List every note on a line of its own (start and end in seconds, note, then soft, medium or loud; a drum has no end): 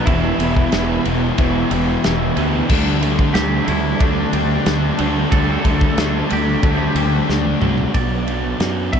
0.06 0.31 E1 medium
0.06 0.39 E2 medium
0.06 0.39 B2 loud
0.06 0.71 E3 medium
0.06 2.35 E3 medium
0.06 0.39 E3 loud
0.06 2.36 B3 loud
0.06 1.01 E4 medium
0.06 kick loud
0.06 ride loud
0.10 2.37 E4 medium
0.10 2.38 G4 loud
0.39 0.63 E1 medium
0.39 0.72 E2 medium
0.39 0.72 B2 medium
0.39 0.73 E3 medium
0.39 1.05 B3 medium
0.39 ride medium
0.57 kick medium
0.72 0.97 E1 medium
0.72 1.04 E2 medium
0.72 1.04 B2 medium
0.72 2.34 E3 medium
0.72 1.05 E3 medium
0.72 snare loud
0.72 ride loud
1.05 1.30 E1 medium
1.05 1.38 E2 medium
1.05 1.39 B2 medium
1.05 1.38 E3 medium
1.05 2.70 B3 medium
1.05 ride medium
1.37 1.63 E1 loud
1.37 1.71 E2 medium
1.37 1.72 B2 medium
1.37 1.72 E3 medium
1.37 2.02 E4 medium
1.37 kick loud
1.37 ride loud
1.70 1.95 E1 medium
1.70 2.03 E2 loud
1.70 2.04 B2 loud
1.70 2.04 E3 loud
1.70 3.04 G4 medium
1.70 ride medium
2.04 2.29 E1 medium
2.04 2.36 E2 medium
2.04 2.36 B2 medium
2.04 2.36 E3 medium
2.04 2.70 E4 medium
2.04 snare loud
2.04 ride loud
2.36 2.61 D2 medium
2.36 2.68 E2 medium
2.36 2.68 B2 medium
2.36 2.68 E3 medium
2.36 2.69 E4 medium
2.36 2.74 G4 medium
2.36 ride medium
2.40 2.70 E3 medium
2.40 2.70 B3 medium
2.69 3.18 D2 loud
2.69 3.01 D3 loud
2.69 4.98 D3 medium
2.69 3.33 G3 medium
2.69 4.98 G3 loud
2.69 3.02 A3 loud
2.69 4.99 A3 loud
2.69 3.02 D4 loud
2.69 kick loud
2.69 crash loud
2.74 4.99 D4 loud
2.74 4.97 G4 loud
3.01 3.35 D3 medium
3.01 3.67 A3 medium
3.01 3.35 A3 medium
3.01 3.35 D4 medium
3.01 ride medium
3.19 kick medium
3.34 3.59 D2 medium
3.34 3.66 D3 medium
3.34 4.98 G3 medium
3.34 3.67 A3 loud
3.34 3.67 D4 loud
3.34 3.66 G4 loud
3.34 snare loud
3.34 ride loud
3.66 3.92 D2 medium
3.66 3.99 D3 medium
3.66 3.99 A3 medium
3.66 5.32 A3 medium
3.66 4.00 D4 medium
3.66 4.01 E4 medium
3.66 ride medium
4.00 4.25 D2 medium
4.00 4.31 D3 medium
4.00 4.32 A3 medium
4.00 4.66 D4 medium
4.00 5.36 D4 medium
4.00 4.33 D4 medium
4.00 kick loud
4.00 ride medium
4.33 4.57 D2 medium
4.33 4.65 D3 medium
4.33 4.65 A3 medium
4.33 4.66 D4 loud
4.33 5.98 G4 medium
4.33 ride medium
4.66 4.90 D2 medium
4.66 4.99 D3 medium
4.66 4.99 A3 medium
4.66 5.00 D4 medium
4.66 6.31 D4 medium
4.66 snare loud
4.66 ride loud
4.99 5.23 D2 medium
4.99 5.30 D3 medium
4.99 5.29 D3 medium
4.99 5.31 G3 medium
4.99 5.30 G3 medium
4.99 5.31 A3 medium
4.99 5.33 D4 medium
4.99 5.31 D4 medium
4.99 5.30 G4 medium
4.99 ride medium
5.30 5.56 D2 loud
5.30 7.59 D3 medium
5.30 5.63 D3 medium
5.30 7.59 G3 loud
5.30 5.98 G3 medium
5.30 5.63 A3 medium
5.30 7.60 A3 loud
5.30 5.64 D4 loud
5.30 7.60 D4 loud
5.30 7.61 G4 loud
5.30 6.33 A4 loud
5.30 kick loud
5.30 ride loud
5.64 5.89 D2 medium
5.64 5.95 D3 medium
5.64 5.96 A3 medium
5.64 6.30 A3 medium
5.64 5.96 D4 medium
5.64 kick medium
5.64 ride medium
5.81 kick medium
5.96 6.22 D2 loud
5.96 6.29 D3 medium
5.96 7.62 G3 medium
5.96 6.29 A3 medium
5.96 6.29 D4 loud
5.96 snare loud
5.96 ride loud
6.30 6.55 D2 medium
6.30 6.61 D3 medium
6.30 6.62 A3 medium
6.30 7.95 A3 medium
6.30 6.63 D4 loud
6.30 7.26 G4 medium
6.30 ride medium
6.62 6.87 D2 medium
6.62 6.93 D3 medium
6.62 6.94 A3 medium
6.62 7.29 D4 medium
6.62 6.94 D4 medium
6.62 kick loud
6.62 ride loud
6.94 7.20 D2 loud
6.94 7.26 D3 medium
6.94 7.27 A3 medium
6.94 7.27 D4 loud
6.94 7.95 G4 medium
6.94 ride medium
7.28 7.53 D2 loud
7.28 7.59 D3 medium
7.28 7.59 A3 medium
7.28 7.60 D4 medium
7.28 7.95 D4 medium
7.28 snare medium
7.45 high tom medium
7.60 7.86 C2 medium
7.60 7.92 D3 medium
7.60 7.95 G3 medium
7.60 7.92 A3 medium
7.60 7.93 A3 medium
7.60 7.92 D4 medium
7.60 7.93 D4 medium
7.60 7.93 G4 medium
7.60 mid tom medium
7.64 7.93 D3 medium
7.64 7.94 G3 medium
7.78 floor tom medium
7.93 8.52 B1 medium
7.93 8.58 B2 medium
7.93 8.60 B2 medium
7.93 8.60 F#3 medium
7.93 8.58 F#3 medium
7.93 8.60 F#3 medium
7.93 8.30 B3 loud
7.93 8.62 B3 medium
7.93 8.28 D4 medium
7.93 8.92 D5 medium
7.93 kick medium
7.93 ride medium
7.97 8.26 F#4 medium
8.27 8.60 B3 medium
8.27 8.60 D4 medium
8.27 8.61 F#4 medium
8.27 ride medium
8.59 8.89 F#2 medium
8.59 9.00 B2 medium
8.59 9.00 F#3 medium
8.59 8.95 B3 medium
8.59 9.00 B3 medium
8.59 8.92 D4 medium
8.59 8.91 F#4 medium
8.59 snare loud
8.59 ride medium
8.92 9.00 B1 medium
8.92 9.00 B3 medium
8.92 9.00 B3 soft
8.92 9.00 D4 medium
8.92 9.00 F#4 medium
8.92 9.00 E5 medium
8.92 kick medium
8.92 ride medium